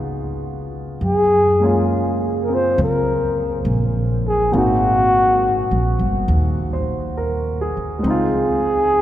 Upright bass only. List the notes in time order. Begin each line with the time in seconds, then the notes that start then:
Already playing: C#2
1.01 F#2
2.78 C#2
3.65 A#1
4.53 G#1
5.71 A#1
5.99 G1
6.28 D#2
7.77 muted upright bass stroke
8.04 C#2